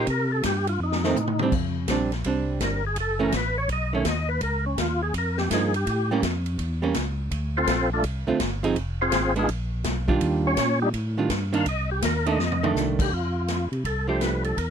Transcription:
0.07 tonewheel organ C3 A#4, kick, ride
0.32 tonewheel organ A4
0.43 tonewheel organ G2 G4, kick, snare, hi-hat pedal, ride
0.67 tonewheel organ F4, ride
0.80 tonewheel organ F2 D#4
0.92 snare
1.04 hollow-body jazz guitar D#3 A3 C4, snare
1.16 tonewheel organ A2, hi-hat pedal, mid tom
1.27 mid tom
1.39 hollow-body jazz guitar G3 C4, mid tom
1.43 hollow-body jazz guitar D4
1.52 tonewheel organ F2, kick, crash
1.88 tonewheel organ A#1, hollow-body jazz guitar G3 C4 D4, kick, snare, hi-hat pedal, ride
2.12 snare, ride
2.24 tonewheel organ C2, hollow-body jazz guitar G3 C4 D4, kick, ride
2.61 tonewheel organ G1 A#4, kick, snare, hi-hat pedal, ride
2.87 tonewheel organ G#4
2.96 tonewheel organ F#1, kick, ride
3.00 tonewheel organ A4
3.19 hollow-body jazz guitar E3 A3 C#4, tonewheel organ A#4
3.32 tonewheel organ A1, kick, snare, hi-hat pedal, ride
3.37 tonewheel organ B4
3.58 tonewheel organ C#5
3.69 tonewheel organ B1 D#5, kick, ride
3.93 hollow-body jazz guitar D#3 A3 C#4, tonewheel organ C#5
4.05 tonewheel organ D#2 D#5, kick, snare, hi-hat pedal, ride
4.29 tonewheel organ B4
4.41 tonewheel organ C#2 A#4, kick, ride
4.66 tonewheel organ C#4
4.78 tonewheel organ D#2 F4, kick, snare, hi-hat pedal, ride
5.03 tonewheel organ G#4
5.14 tonewheel organ F2, kick, ride
5.18 tonewheel organ A#4
5.38 tonewheel organ G4, snare
5.50 tonewheel organ G2 G#4, hollow-body jazz guitar F3 A#3 D#4, kick, snare, hi-hat pedal, ride
5.74 tonewheel organ G4, ride
5.86 tonewheel organ A2, kick, ride
6.11 hollow-body jazz guitar G3 A#3 C#4
6.22 tonewheel organ F2, kick, snare, hi-hat pedal, ride
6.46 ride
6.59 tonewheel organ E2, kick, ride
6.82 hollow-body jazz guitar G3 A#3 C#4
6.94 tonewheel organ C#2, kick, snare, hi-hat pedal, ride
7.31 tonewheel organ D2, kick, ride
7.57 tonewheel organ C4 F4 A4 C5
7.67 tonewheel organ A#1, kick, snare, hi-hat pedal, ride
7.93 tonewheel organ A3 D4 F4 A4
8.04 tonewheel organ C2, kick, ride
8.27 tonewheel organ C2, hollow-body jazz guitar D3 A3 C4 F4
8.40 tonewheel organ G1, kick, snare, hi-hat pedal, ride
8.63 hollow-body jazz guitar F3 C4 D#4 G#4, ride
8.76 tonewheel organ F1, kick, ride
9.01 tonewheel organ C4 F4 G#4 C5
9.12 tonewheel organ G#1, kick, snare, hi-hat pedal, ride
9.36 hollow-body jazz guitar G#3 B3 D4, tonewheel organ G#3 D#4 F4 G#4, ride
9.49 tonewheel organ A#1, kick, ride
9.84 tonewheel organ B1, kick, snare, hi-hat pedal, ride
10.08 hollow-body jazz guitar D#3 G3 D4 F4, kick
10.21 tonewheel organ D#2, kick, ride
10.47 tonewheel organ C#4 C#5
10.57 tonewheel organ A#2, kick, snare, hi-hat pedal, ride
10.82 tonewheel organ G3 D4 D#4 G4
10.94 tonewheel organ A2, kick, ride
11.18 hollow-body jazz guitar D#3 G3 D4 F4
11.30 tonewheel organ G2, kick, snare, hi-hat pedal, ride
11.53 hollow-body jazz guitar D#3 A#3 D4, tonewheel organ F5, ride
11.66 tonewheel organ C2 D#5, kick, ride
11.91 tonewheel organ G4
12.02 tonewheel organ D#2 A#4, kick, snare, hi-hat pedal, ride
12.26 hollow-body jazz guitar D#3 A3 D4, tonewheel organ D#5, ride
12.38 tonewheel organ F2, snare
12.52 mid tom
12.63 hollow-body jazz guitar D#3 A3 D4, mid tom
12.74 tonewheel organ C2, snare, hi-hat pedal
12.99 tonewheel organ G4, kick, crash
13.12 tonewheel organ F2 F4, kick
13.48 snare, hi-hat pedal, ride
13.71 tonewheel organ C3, ride
13.85 tonewheel organ C2 A4, kick, ride
14.07 hollow-body jazz guitar F3 A3 D4 G4, tonewheel organ C5
14.21 tonewheel organ B4, snare, hi-hat pedal, ride
14.44 tonewheel organ A4, ride
14.57 tonewheel organ E2 A#4, kick, ride

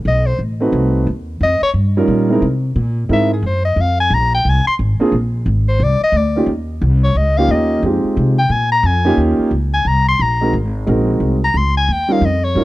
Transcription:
0.05 upright bass B1, soprano saxophone D#5
0.27 soprano saxophone C5
0.39 upright bass A1
0.60 grand piano A3 C4 D#4 F#4 B4
0.72 upright bass C2
1.07 upright bass D#2
1.41 upright bass F2, soprano saxophone D#5
1.62 soprano saxophone C#5, muted upright bass stroke
1.74 upright bass G2
1.97 grand piano G3 C#4 D#4 F4 A#4
2.08 upright bass A#2
2.30 grand piano G#3 C4 D#4 E4 A#4
2.42 upright bass C3
2.76 upright bass A#2
3.09 upright bass G#2, grand piano G#3 C4 D#4 E4 A#4, soprano saxophone E5
3.33 soprano saxophone G#4
3.42 upright bass F#2, soprano saxophone C5
3.65 soprano saxophone D#5
3.76 upright bass F2
3.81 soprano saxophone F5
4.00 soprano saxophone G#5
4.10 upright bass A#1, soprano saxophone A#5
4.34 soprano saxophone G5
4.45 upright bass C2
4.49 soprano saxophone G#5
4.67 soprano saxophone C6
4.79 upright bass G#1
4.99 grand piano A#3 C4 D4 F4 G#4, muted upright bass stroke
5.12 upright bass A#1
5.46 upright bass G#1
5.68 soprano saxophone C5
5.80 upright bass C2, soprano saxophone D5
6.00 soprano saxophone D#5, muted upright bass stroke
6.12 upright bass D2
6.17 soprano saxophone D5
6.36 grand piano A#3 C#4 D#4 F4 G4
6.46 upright bass D#2
6.82 upright bass C2
7.04 soprano saxophone C#5
7.15 upright bass C#2, soprano saxophone D#5
7.37 grand piano A#3 C#4 D#4 F4 G4, soprano saxophone F5
7.49 upright bass D#2, soprano saxophone D#5
7.82 upright bass F2, grand piano G#3 C4 D#4 F4 G4
8.04 muted upright bass stroke
8.17 upright bass C3
8.39 soprano saxophone G5
8.50 upright bass A#2, soprano saxophone G#5
8.72 soprano saxophone A#5
8.83 upright bass F2, soprano saxophone G#5
9.05 grand piano A#3 C#4 D#4 F4 G4
9.17 upright bass D#2
9.39 muted upright bass stroke
9.51 upright bass C#2
9.74 soprano saxophone G#5
9.85 upright bass C2, soprano saxophone A#5
10.08 soprano saxophone C6
10.19 upright bass A#1, soprano saxophone A#5
10.41 grand piano G#3 C4 D#4 F#4 A#4
10.53 upright bass G#1
10.87 upright bass A#1, grand piano G#3 C4 D#4 F#4 A#4
11.20 upright bass C2
11.44 soprano saxophone A#5
11.54 upright bass C#2, soprano saxophone C6
11.77 soprano saxophone G#5
11.88 upright bass D#2, soprano saxophone G5
12.08 grand piano G3 C#4 D#4 F4 A#4, soprano saxophone F5
12.21 upright bass F2, soprano saxophone D#5
12.44 soprano saxophone C#5
12.55 upright bass G2, grand piano G3 C#4 D#4 F4 A#4

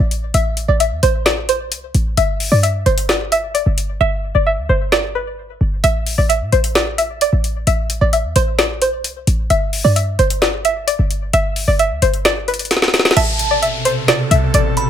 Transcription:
Already playing: synth pluck D5
0.00 808-style bass A1
0.11 closed hi-hat
0.34 808-style bass A1, synth pluck E5, closed hi-hat
0.57 closed hi-hat
0.68 808-style bass A1, synth pluck D5
0.80 synth pluck E5, closed hi-hat
0.91 808-style bass E2
1.03 808-style bass A1, synth pluck C5, closed hi-hat
1.26 synth pluck D5, snare, closed hi-hat
1.49 synth pluck C5, closed hi-hat
1.72 808-style bass C2, closed hi-hat
1.95 808-style bass A1, closed hi-hat
2.17 808-style bass G1, synth pluck E5, closed hi-hat
2.40 open hi-hat
2.52 808-style bass G2, synth pluck D5
2.63 synth pluck E5, closed hi-hat
2.86 808-style bass G1, synth pluck C5, closed hi-hat
2.98 closed hi-hat
3.09 synth pluck D5, snare, closed hi-hat
3.32 synth pluck E5, closed hi-hat
3.54 synth pluck D5, closed hi-hat
3.66 808-style bass G1
3.78 closed hi-hat
4.01 808-style bass G1, synth pluck E5
4.35 808-style bass G1, synth pluck D5
4.46 synth pluck E5
4.58 808-style bass D2
4.69 808-style bass G1, synth pluck C5
4.92 synth pluck D5, snare
5.15 synth pluck B4
5.61 808-style bass G1
5.84 808-style bass A1, synth pluck E5, closed hi-hat
6.06 open hi-hat
6.18 808-style bass A1, synth pluck D5
6.29 synth pluck E5, closed hi-hat
6.41 808-style bass A2
6.52 808-style bass A1, synth pluck C5, closed hi-hat
6.64 closed hi-hat
6.75 synth pluck D5, snare, closed hi-hat
6.98 synth pluck E5, closed hi-hat
7.21 synth pluck D5, closed hi-hat
7.33 808-style bass A1
7.44 closed hi-hat
7.67 808-style bass A1, synth pluck E5, closed hi-hat
7.90 closed hi-hat
8.01 808-style bass A1, synth pluck D5
8.13 synth pluck E5, closed hi-hat
8.24 808-style bass E2
8.36 808-style bass A1, synth pluck C5, closed hi-hat
8.58 synth pluck D5, snare, closed hi-hat
8.82 synth pluck C5, closed hi-hat
9.04 808-style bass C2, closed hi-hat
9.27 808-style bass A1, closed hi-hat
9.50 808-style bass G1, synth pluck E5, closed hi-hat
9.73 open hi-hat
9.84 808-style bass G2, synth pluck D5
9.96 synth pluck E5, closed hi-hat
10.19 808-style bass G1, synth pluck C5, closed hi-hat
10.30 closed hi-hat
10.42 synth pluck D5, snare, closed hi-hat
10.65 synth pluck E5, closed hi-hat
10.87 synth pluck D5, closed hi-hat
10.99 808-style bass G1
11.11 closed hi-hat
11.33 808-style bass G1, synth pluck E5, closed hi-hat
11.56 open hi-hat
11.68 808-style bass G1, synth pluck D5
11.79 synth pluck E5, closed hi-hat
11.91 808-style bass D2
12.02 808-style bass G1, synth pluck C5, closed hi-hat
12.14 closed hi-hat
12.25 synth pluck D5, snare, closed hi-hat
12.48 synth pluck B4, closed hi-hat
12.54 closed hi-hat
12.59 closed hi-hat
12.65 closed hi-hat
12.71 snare, closed hi-hat
12.77 snare
12.82 snare
12.88 snare
12.94 snare, closed hi-hat
12.99 snare
13.05 snare
13.11 snare
13.16 808-style bass A1, analog synth pad B2 C3 A4, synth pluck E5, synth bell A5, closed hi-hat, crash, downlifter
13.39 closed hi-hat
13.51 synth pluck D5
13.62 synth pluck E5, closed hi-hat
13.85 synth pluck C5, closed hi-hat
14.08 synth pluck D5, snare, closed hi-hat
14.31 808-style bass C2, synth pluck E5, closed hi-hat
14.54 808-style bass A1, synth pluck D5, closed hi-hat
14.77 synth bell B5, closed hi-hat

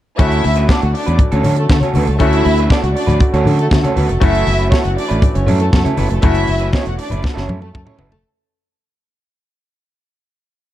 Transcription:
0.18 fingered electric bass D2, french horn section D3 A3 C#4 F#4, grand piano A3 C#4 E4 F#4, clean electric guitar A3 C#4 F#4 A4, violin section E4 E5, kick, closed hi-hat, muted conga
0.32 closed hi-hat
0.44 fingered electric bass D2, muted clean electric guitar stroke, open hi-hat, muted conga
0.56 clean electric guitar A3 C#4 F#4 B4, closed hi-hat
0.68 clean electric guitar A3 C#4 F#4 A4, violin section D4 D5, kick, snare, high conga
0.82 fingered electric bass D2, violin section F#4 F#5, muted clean electric guitar stroke, closed hi-hat
0.93 violin section D4 D5, muted clean electric guitar stroke, open hi-hat
1.06 fingered electric bass E2, clean electric guitar A3 C#4 F#4 B4, closed hi-hat
1.19 muted clean electric guitar stroke, kick, closed hi-hat, muted conga, low conga
1.32 fingered electric bass D2, clean electric guitar A3 C#4 F#4 A4, violin section C#4 C#5, closed hi-hat
1.43 fingered electric bass D3, clean electric guitar A3 C#4 F#4 A4, open hi-hat, muted conga, low conga
1.56 violin section A3 A4, muted clean electric guitar stroke, closed hi-hat
1.69 fingered electric bass D3, violin section A3 A4, muted clean electric guitar stroke, kick, snare, high conga
1.81 clean electric guitar A3 C#4 F#4 A4, violin section C#4 C#5, closed hi-hat, high conga
1.94 fingered electric bass D2, clean electric guitar A3 C#4 F#4 A4, violin section B3 B4, open hi-hat, high conga
2.07 fingered electric bass C#2, violin section A3 A4, muted clean electric guitar stroke, closed hi-hat
2.19 fingered electric bass D2, grand piano A3 C#4 E4 F#4, clean electric guitar A3 C#4 A4, violin section E4 E5, kick, closed hi-hat, muted conga
2.23 clean electric guitar F#4
2.33 closed hi-hat
2.45 fingered electric bass D2, muted clean electric guitar stroke, open hi-hat, muted conga
2.58 clean electric guitar A3 C#4 F#4 B4, closed hi-hat
2.70 clean electric guitar A3 C#4 F#4 A4, violin section D4 D5, kick, snare, high conga
2.82 fingered electric bass C#2, violin section F#4 F#5, muted clean electric guitar stroke, closed hi-hat
2.95 violin section D4 D5, muted clean electric guitar stroke, open hi-hat
3.07 fingered electric bass D2, clean electric guitar A3 C#4 F#4 B4, closed hi-hat, low conga
3.20 muted clean electric guitar stroke, kick, closed hi-hat, muted conga
3.33 fingered electric bass D2, clean electric guitar A3 C#4 F#4 A4, violin section C#4 C#5, closed hi-hat
3.45 fingered electric bass D3, clean electric guitar A3 C#4 F#4 A4, open hi-hat, muted conga, low conga
3.59 violin section A3 A4, muted clean electric guitar stroke, closed hi-hat
3.71 fingered electric bass D3, violin section A3 A4, muted clean electric guitar stroke, kick, snare, high conga
3.84 clean electric guitar A3 C#4 F#4 A4, violin section C#4 C#5, closed hi-hat, high conga
3.95 fingered electric bass D2, clean electric guitar A3 C#4 F#4 A4, violin section B3 B4, open hi-hat, high conga
4.09 fingered electric bass F1, violin section A3 A4, muted clean electric guitar stroke, closed hi-hat
4.19 fingered electric bass F#1, french horn section E3 C#4, grand piano A3 C#4 E4, clean electric guitar A3 C#4, violin section E4 E5, kick, closed hi-hat, muted conga
4.23 clean electric guitar E4 A4, grand piano F#4
4.35 closed hi-hat
4.46 fingered electric bass F#1, muted clean electric guitar stroke, open hi-hat, muted conga
4.59 clean electric guitar A3 C#4 E4 B4, closed hi-hat
4.70 clean electric guitar A3 C#4 E4 A4, violin section C#4 C#5, kick, snare, high conga
4.83 fingered electric bass F#1, violin section F#4 F#5, muted clean electric guitar stroke, closed hi-hat
4.97 violin section D4 D5, muted clean electric guitar stroke, open hi-hat
5.08 fingered electric bass A1, clean electric guitar A3 C#4 E4 B4, closed hi-hat
5.22 kick, closed hi-hat, muted conga, low conga
5.33 fingered electric bass F#1, violin section C#4 C#5, muted clean electric guitar stroke, closed hi-hat
5.46 fingered electric bass F#2, clean electric guitar A3 C#4 E4 A4, open hi-hat, muted conga, low conga
5.59 violin section A3 A4, muted clean electric guitar stroke, closed hi-hat
5.72 fingered electric bass F#2, violin section A3 A4, muted clean electric guitar stroke, kick, snare, high conga
5.85 clean electric guitar A3 C#4 E4 A4, violin section C#4 C#5, closed hi-hat, high conga
5.96 fingered electric bass F#1, clean electric guitar A3 C#4 E4 A4, violin section B3 B4, open hi-hat, high conga
6.09 fingered electric bass F1, violin section A3 A4, muted clean electric guitar stroke, closed hi-hat
6.22 fingered electric bass F#1, clean electric guitar A3 C#4 E4 A4, grand piano A3 C#4 E4 F#4, violin section E4 E5, kick, closed hi-hat, muted conga
6.35 closed hi-hat
6.47 fingered electric bass F#1, muted clean electric guitar stroke, open hi-hat, muted conga
6.59 clean electric guitar A3 C#4 E4 B4, closed hi-hat
6.72 clean electric guitar A3 C#4 E4 A4, violin section C#4 C#5, kick, snare, high conga
6.86 fingered electric bass E1, violin section F#4 F#5, muted clean electric guitar stroke, closed hi-hat
6.98 violin section D4 D5, muted clean electric guitar stroke, open hi-hat
7.10 fingered electric bass F#1, clean electric guitar A3 C#4 E4 B4, closed hi-hat, low conga
7.23 muted clean electric guitar stroke, kick, snare, muted conga
7.34 fingered electric bass F#1, clean electric guitar A3 C#4 E4 A4, violin section C#4 C#5, snare
7.47 fingered electric bass F#2, clean electric guitar A3 C#4 E4 A4, high tom, muted conga, low conga
7.61 violin section A3 A4, muted clean electric guitar stroke, high tom
7.73 fingered electric bass F#2, violin section A3 A4, muted clean electric guitar stroke, kick, mid tom, high conga
7.86 clean electric guitar A3 C#4 E4 A4, violin section C#4 C#5, mid tom
7.97 clean electric guitar A3 C#4 E4 A4, violin section B3 B4, floor tom, high conga
8.01 fingered electric bass F#1
8.11 fingered electric bass F1, violin section A3 A4, muted clean electric guitar stroke, floor tom

